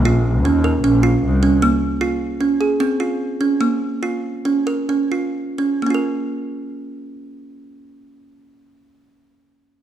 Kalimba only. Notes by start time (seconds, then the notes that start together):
0.05 F4
0.45 C#4
0.64 A#4
0.84 C#4
1.03 F4
1.43 C#4
1.62 A#3
2.01 F4
2.40 C#4
2.61 G#4
2.80 C4
3.00 F4
3.41 C#4
3.61 A#3
4.03 F4
4.45 C#4
4.67 A#4
4.89 C#4
5.12 F4
5.58 C#4
5.82 A#3
5.86 C#4 F4
5.94 A#4